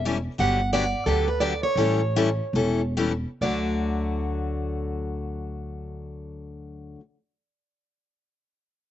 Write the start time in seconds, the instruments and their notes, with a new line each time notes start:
Already playing: upright bass E1
0.05 steel-string acoustic guitar E3 G3 C#4 E4 A4
0.38 upright bass G1, steel-string acoustic guitar D3 F#3 B3 D4 G4 F#5
0.73 steel-string acoustic guitar D3 F#3 B3 D4 G4 D5
1.06 upright bass D2, steel-string acoustic guitar D3 F#3 B3 D4 G4 A4
1.28 steel-string acoustic guitar B4
1.40 steel-string acoustic guitar D3 F#3 B3 D4 G4 D5
1.63 steel-string acoustic guitar C#5
1.76 upright bass A1, steel-string acoustic guitar E3 G3 C#4 E4 A4
2.16 steel-string acoustic guitar E3 G3 C#4 E4 A4
2.53 upright bass E1, steel-string acoustic guitar E3 G3 C#4 E4 A4
2.97 steel-string acoustic guitar E3 G3 C#4 E4 A4
3.41 upright bass D2, steel-string acoustic guitar D3 F#3 A3 F#4 D5